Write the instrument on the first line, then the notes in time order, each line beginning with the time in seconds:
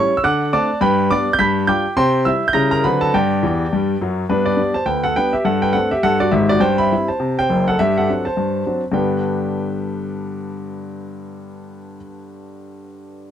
grand piano
Already playing: G3 C#4 E4 C#5 C#6
0.17 E6
0.23 D3 F#5 D6 F#6
0.53 A3 C4 D4 D5 A5 D6
0.81 G2 B4 G5 B5
1.11 G3 B3 D4 D5 D6
1.33 G6
1.39 G2 B5 G6 B6
1.67 G3 D4 F4 G5 D6 G6
1.97 C3 C5 G5 C6
2.25 G3 E4 E5 E6
2.48 G6
2.53 C#3 G3 C#4 E4 A#5 A#6
2.71 A#4 A#5
2.84 D3 F#3 C4 D4 B4 B5
3.01 A4 A5
3.14 G2 G4 D5 G5
3.43 E2 E3
3.73 G2 G3
4.01 F#2 F#3
4.29 G2 B3 D4 B4
4.46 G4 D5
4.57 G3 B3 D4
4.74 C5 A5
4.86 D2 B4 G5
5.04 A4 F#5
5.16 G3 B3 D4 B4 G5
5.33 G4 E5
5.45 G2 A4 F#5
5.62 B4 G5
5.73 A3 C4 D4 A4 F#5
5.91 G4 E5
6.03 G2 A4 F#5
6.20 F#4 D5
6.31 G#1 G#2 G4 E5
6.49 F#4 D5
6.60 G2 C5 G5
6.78 E5 B5
6.92 G3 C4 E4
7.08 C5 A5
7.20 C3
7.39 C5 G5
7.49 F#1 F#2
7.68 A4 F#5
7.79 G2 G4 E5
7.98 A4 F#5
8.09 F#3 C4 D4
8.25 C5 A5
8.37 G2
8.66 F#3 C4 D4
8.92 G2 D3 B3 D4 G4 B4 G5